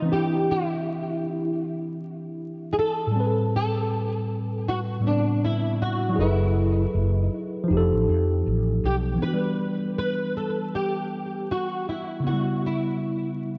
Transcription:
Already playing: D#4
0.02 E3 C4
0.09 D4 G4
0.16 E4
0.51 E4
2.73 G#4
2.79 A4
3.07 A2
3.11 G3
3.16 C4
3.20 B4
3.56 A4
4.68 F#4
5.00 A2 G3
5.04 B3 D4
5.10 C4
5.45 E4
5.82 F#4
6.09 F#3 E4
6.16 F#1 G#4 A4
6.20 E4 B4
6.94 F#1
7.15 D#4
7.64 F3
7.68 F1 D#4
7.73 G4
7.77 A4
7.93 A1
8.09 F2
8.46 A1
8.84 B1 G4
9.14 E3
9.18 B3
9.22 D4 B4
9.27 F#4
9.34 G3
9.98 B4
10.37 A4
10.75 G4
11.51 F#4
11.89 E4
12.20 C#3 B3
12.27 E4 F#4
12.33 G3
12.66 E4

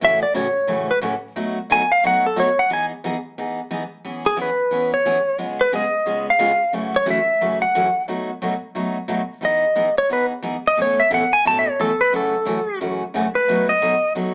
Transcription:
0.01 A2 C#3 E3 A3 C#4 F#4 E5
0.23 D5
0.34 A2 C#3 E3 A3 C#4 F#4 C#5
0.67 A2 C#3 E3 A3 C#4 F#4
0.91 B4
1.01 A2 C#3 E3 A3 C#4 F#4
1.36 B2 F#3 A3 D#4 F#4
1.70 B2 F#3 A3 D#4 F#4 G#5
1.92 F5
2.03 B2 F#3 A3 D#4 F#4 F#5
2.26 A4
2.36 B2 F#3 A3 D#4 F#4 C#5
2.59 F#5
2.70 E3 B3 D#4 G#4 G#5
3.04 E3 B3 D#4 G#4
3.38 E3 B3 D#4 G#4
3.71 E3 B3 D#4 G#4
4.05 E3 B3 C#4 G#4
4.26 G#4
4.37 E3 B3 C#4 G#4
4.42 B4
4.71 E3 B3 C#4 G#4
4.94 C#5
5.05 E3 B3 C#4 G#4
5.38 C#3 G#3 B3 F4 G#4
5.61 B4
5.72 C#3 G#3 B3 F4 G#4 D#5
6.06 C#3 G#3 B3 F4 G#4
6.30 F5
6.39 C#3 G#3 B3 F4 G#4
6.73 F#2 C#3 E3 A3 C#4 F#4
6.96 C#5
7.06 F#2 C#3 E3 A3 C#4 F#4
7.10 E5
7.41 F#2 C#3 E3 A3 C#4 F#4
7.62 F#5
7.75 F#2 C#3 E3 A3 C#4 F#4
8.08 B2 F#3 A3 D#4 F#4
8.42 B2 F#3 A3 D#4 F#4
8.75 B2 F#3 A3 D#4 F#4
9.08 B2 F#3 A3 D#4 F#4
9.41 E3 B3 D#4 G#4
9.45 D#5
9.76 E3 B3 D#4 G#4
9.98 C#5
10.10 E3 B3 D#4 G#4 B4
10.42 E3 B3 D#4 G#4
10.67 D#5
10.77 A2 B2 E3 A3 C#4 A4
10.82 C#5
11.00 E5
11.10 A2 B2 E3 A3 C#4 A4 F#5
11.33 G#5
11.45 A2 B2 E3 A3 C#4 A4 A5
11.59 E5
11.70 C#5
11.80 A2 B2 E3 A3 C#4 A4
12.01 B4
12.13 F#2 C#3 E3 A3 C#4 F#4 A4
12.45 F#2 C#3 E3 A3 C#4 F#4
12.81 F#2 C#3 E3 A3 C#4 F#4
13.14 F#2 C#3 E3 A3 C#4 F#4
13.35 B4
13.48 B2 F#3 A3 D#4 F#4
13.69 D#5
13.82 B2 F#3 A3 D#4 F#4
14.15 B2 F#3 A3 D#4 F#4

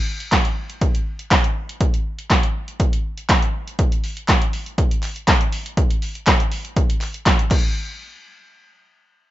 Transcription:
0.20 closed hi-hat
0.32 kick, snare, clap, closed hi-hat
0.45 closed hi-hat
0.70 closed hi-hat
0.81 kick, closed hi-hat
0.95 closed hi-hat
1.19 closed hi-hat
1.31 kick, snare, clap, closed hi-hat
1.44 closed hi-hat
1.69 closed hi-hat
1.81 kick, closed hi-hat
1.94 closed hi-hat
2.19 closed hi-hat
2.30 kick, snare, clap, closed hi-hat
2.43 closed hi-hat
2.68 closed hi-hat
2.80 kick, closed hi-hat
2.93 closed hi-hat
3.18 closed hi-hat
3.29 kick, snare, clap, closed hi-hat
3.42 closed hi-hat
3.68 closed hi-hat
3.79 kick, closed hi-hat
3.92 closed hi-hat
4.04 open hi-hat
4.17 closed hi-hat
4.28 kick, snare, clap, closed hi-hat
4.42 closed hi-hat
4.53 open hi-hat
4.66 closed hi-hat
4.78 kick, closed hi-hat
4.91 closed hi-hat
5.03 clap, open hi-hat
5.16 closed hi-hat
5.28 kick, snare, clap, closed hi-hat
5.41 closed hi-hat
5.53 open hi-hat
5.66 closed hi-hat
5.77 kick, closed hi-hat
5.91 closed hi-hat
6.02 open hi-hat
6.15 closed hi-hat
6.27 kick, snare, clap, closed hi-hat
6.40 closed hi-hat
6.52 open hi-hat
6.65 closed hi-hat
6.76 kick, closed hi-hat
6.90 closed hi-hat
7.01 clap, open hi-hat
7.14 closed hi-hat
7.26 kick, snare, clap, closed hi-hat
7.39 closed hi-hat
7.51 kick, clap, crash

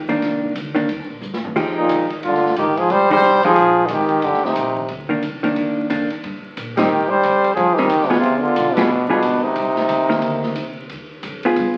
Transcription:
Already playing: D#2
0.09 D#3 A#3 D4, ride
0.22 C2, kick, snare, ride
0.43 kick
0.55 D2, kick, hi-hat pedal, ride
0.75 D#3 A#3 D4, ride
0.89 D#2, ride
0.99 C2
1.10 A#1
1.21 G2, hi-hat pedal
1.34 snare
1.42 muted upright bass stroke, floor tom
1.56 F2 F3 G#3 D#4 G4, kick, crash
1.77 A#2 D#4
1.89 D#2, kick, hi-hat pedal, ride
2.10 ride
2.23 G2 D3 F4, kick, ride
2.34 snare
2.46 snare
2.56 G#2 D#3 G4, kick, hi-hat pedal, ride
2.77 F3 G#4, ride
2.90 G#1 G3 C5, kick, ride
3.10 F3 G3 G#3 D#4 G4 C5, kick, crash
3.22 C2, hi-hat pedal
3.43 F3 G#3 D#4 G4 G#4, ride
3.56 A#1, kick, ride
3.85 G#1 D3 F4, hi-hat pedal, ride
3.89 D#3 G4, kick
4.09 kick, ride
4.22 G1 D3 G4, ride
4.34 snare
4.45 C3 D#4, snare
4.56 A#1, kick, hi-hat pedal, ride
4.77 kick
4.89 D2, ride
5.09 D#3 A#3 D4
5.23 C2, kick, hi-hat pedal, ride
5.43 D#3 A#3 D4, ride
5.56 D#2, kick, ride
5.90 F2 D#3 A#3 D4, hi-hat pedal, ride
6.10 muted upright bass stroke, ride
6.23 G2, kick, ride
6.43 muted upright bass stroke
6.57 A#2, kick, hi-hat pedal, ride
6.77 D#3 G3 C4 D#4 G4, snare, ride
6.90 G#2
7.10 G3 C5
7.23 F2, kick, hi-hat pedal, ride
7.44 ride
7.54 G2 F3 G#4, kick, ride
7.73 D#3 G4, snare
7.79 G3 C4 D#4
7.89 D#2, kick, hi-hat pedal, ride
8.01 snare
8.07 B2 B3 D4, ride
8.11 F4 G#4, snare
8.18 C3 F4
8.23 D2, kick, ride
8.40 D3 F4, muted upright bass stroke
8.56 B1, kick, hi-hat pedal, ride
8.74 B2 G3 B3 D4, snare, ride
8.78 F4 G#4
8.88 G1
9.08 B2 G3 B3 D4 F4 G#4
9.22 G#1, kick, hi-hat pedal, ride
9.43 C3 D#4
9.56 C2, kick, ride
9.76 snare
9.89 D#2, kick, hi-hat pedal, ride
10.09 D#3 A#3, snare
10.22 D2, kick, ride
10.43 snare
10.56 C2, hi-hat pedal, ride
10.89 D#2, kick, ride
11.23 F2, kick, hi-hat pedal, ride
11.43 B3 F4 G#4, ride
11.56 G2, kick, ride

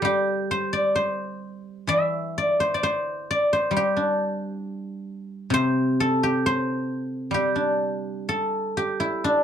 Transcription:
Already playing: A4 C5 D5
0.02 G3 G4
0.51 C5
0.73 D5
0.96 C5
1.87 E3 E5
2.38 D5
2.60 C5
2.74 D5
2.83 C5
3.31 D5
3.53 C5
3.71 G3
3.77 G4
3.97 D4
5.50 C3 C5
6.00 A4
6.23 G4
6.46 C5
7.31 G3 G4
7.56 D4
8.29 A4
8.77 G4
9.00 E4
9.24 D4

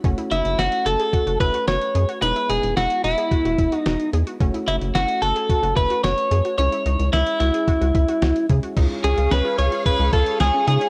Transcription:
0.04 F#1 A3 C#4 F#4, kick, closed hi-hat
0.18 E4, closed hi-hat
0.31 F#1 D#4 E4, closed hi-hat
0.45 F#1, closed hi-hat
0.58 F#1 E4 F#4, snare, closed hi-hat
0.72 closed hi-hat
0.86 F#1 F#4 A4, closed hi-hat
1.00 G#4, closed hi-hat
1.13 F#4, kick, closed hi-hat
1.27 F#1 F#4, closed hi-hat
1.40 F#1 A3 C#4 E4 F#4 B4, kick, closed hi-hat
1.54 F#4, closed hi-hat
1.68 F#1 F#4 C#5, snare, closed hi-hat
1.81 closed hi-hat
1.95 F#2 G#4, closed hi-hat
2.09 F#4, closed hi-hat
2.22 E1 G#3 B3 D#4 E4 B4, closed hi-hat
2.36 E4, closed hi-hat
2.49 E1 D#4 G#4, closed hi-hat
2.63 E1, closed hi-hat
2.77 E1 E4 F#4, snare, closed hi-hat
2.90 closed hi-hat
3.04 E1 E4 F#4, closed hi-hat
3.18 G#4, closed hi-hat
3.31 F#4, kick, closed hi-hat
3.45 E1 F#4, closed hi-hat
3.58 E1 E4, kick, closed hi-hat
3.72 D#4 F#4, closed hi-hat
3.86 E1 F#4, snare, closed hi-hat
4.00 closed hi-hat
4.13 E2 G#4, closed hi-hat
4.27 F#4, closed hi-hat
4.40 F#1 A3 C#4 F#4, kick, closed hi-hat
4.54 E4, closed hi-hat
4.68 F#1 D#4 E4, closed hi-hat
4.81 F#1, closed hi-hat
4.95 F#1 E4 F#4, snare, closed hi-hat
5.08 closed hi-hat
5.22 F#1 F#4 A4, closed hi-hat
5.36 G#4, closed hi-hat
5.49 F#4, kick, closed hi-hat
5.63 F#1 F#4, closed hi-hat
5.77 F#1 E4 B4, kick, closed hi-hat
5.90 F#4, closed hi-hat
6.04 F#1 F#4 C#5, snare, closed hi-hat
6.18 closed hi-hat
6.31 F#2 G#4, closed hi-hat
6.45 F#4, closed hi-hat
6.58 C#2 G#3 C#4 E4 C#5, closed hi-hat
6.72 E4, closed hi-hat
6.86 C#2 D#4, closed hi-hat
7.00 C#2, closed hi-hat
7.13 C#2 E4, snare, closed hi-hat
7.27 closed hi-hat
7.40 C#2 E4 F#4, closed hi-hat
7.54 G#4, closed hi-hat
7.68 F#4, kick, closed hi-hat
7.81 C#2 F#4, closed hi-hat
7.95 C#2 E4, kick, closed hi-hat
8.08 F#4, closed hi-hat
8.22 C#2 F#4, snare, closed hi-hat
8.36 closed hi-hat
8.49 C#3 G#3 C#4 E4 G#4, kick, closed hi-hat
8.63 F#4, closed hi-hat
8.77 C#2 G#3 C#4 D#4 F4 G#4 C#5 F5 C#6, kick, closed hi-hat, crash
9.04 C#2 C#4 G#4, closed hi-hat
9.18 C#2 F4, closed hi-hat
9.31 C#2 C#4 B4, snare, closed hi-hat
9.45 F4
9.58 C#2 C#5, closed hi-hat
9.72 F4, closed hi-hat
9.86 C#4 B4, kick, closed hi-hat
9.99 C#2 C#4
10.13 C#2 F4 A4, kick, closed hi-hat
10.26 closed hi-hat
10.40 C#2 F4 G#4, snare, closed hi-hat
10.54 C#4
10.67 C#3 G#3 C#4 D#4 F4 G#4, closed hi-hat
10.81 C#4, closed hi-hat

